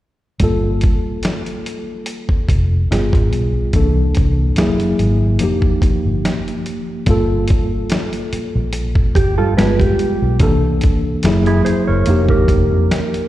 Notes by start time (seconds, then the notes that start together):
0.40 G1 G3 A#3 F4, kick, closed hi-hat
0.44 A4
0.81 kick, closed hi-hat
1.23 snare, closed hi-hat
1.46 closed hi-hat
1.66 closed hi-hat
2.06 closed hi-hat
2.29 muted fingered electric bass stroke, kick
2.49 F1, kick, closed hi-hat
2.91 G1 G3 B3 F4 G#4, snare, closed hi-hat
3.13 G#1, kick, closed hi-hat
3.33 B1, closed hi-hat
3.73 C2 E3 A#3 D4 A4, kick, closed hi-hat
4.15 C2, kick, closed hi-hat
4.56 F#1 F#3 A#3 E4 G#4, snare, closed hi-hat
4.80 closed hi-hat
4.99 G#1, closed hi-hat
5.39 F1 F3 A#3 D#4, closed hi-hat
5.44 G4
5.62 kick
5.82 muted fingered electric bass stroke, kick, closed hi-hat
6.05 G1
6.25 snare, closed hi-hat
6.48 closed hi-hat
6.66 closed hi-hat
7.06 G1 G3 A#3 F4, kick, closed hi-hat
7.11 A4
7.48 kick, closed hi-hat
7.90 snare, closed hi-hat
8.13 closed hi-hat
8.33 muted fingered electric bass stroke, closed hi-hat
8.55 A#1
8.73 closed hi-hat
8.95 kick
9.15 G1 G4, kick, closed hi-hat
9.38 G2 F4 A4
9.57 G1 G3 G#3 B3 F4 G#4 B4, snare, closed hi-hat
9.79 G4, kick, closed hi-hat
9.99 closed hi-hat
10.22 B1
10.40 C2 E3 A#3 D4 A4, kick, closed hi-hat
10.81 kick, closed hi-hat
11.23 F#1 F#3 A#3 E4 G#4, snare, closed hi-hat
11.46 E4 G#4, closed hi-hat
11.65 G#4 C5, muted fingered electric bass stroke, closed hi-hat
11.87 F#1 A#4 C#5
12.06 F1 F3 A#3 D#4, closed hi-hat
12.10 G4
12.29 G4 A#4, kick
12.48 F1, kick, closed hi-hat
12.71 F2
12.91 snare, closed hi-hat
13.14 closed hi-hat